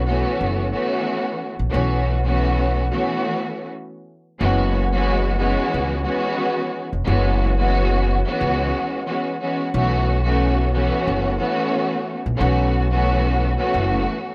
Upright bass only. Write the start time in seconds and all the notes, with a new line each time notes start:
Already playing: B1
0.41 F#1
1.59 A#1
1.74 B1
4.41 F#1
5.74 C#2
6.93 F1
7.07 F#1
8.41 C#2
9.74 B1
11.07 F#1
12.26 A#1
12.41 B1
13.74 F#1